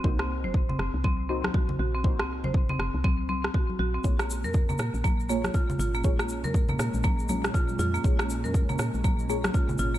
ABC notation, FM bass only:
X:1
M:4/4
L:1/16
Q:"Swing 16ths" 1/4=120
K:Bbm
V:1 name="FM bass" clef=bass
C,,3 G,,,3 G,,, C,,4- C,, z2 B,,,2- | B,,, C,,2 G,,,3 G,,, C,,4- C,, z2 B,,, z | B,,,3 F,,3 B,, B,,,4- B,,, z2 A,,,2- | A,,, B,,,2 F,,3 B,, B,,,4- B,,, z2 F,, z |
B,,,3 F,,3 B,, B,,,4- B,,, z2 A,,,2 |]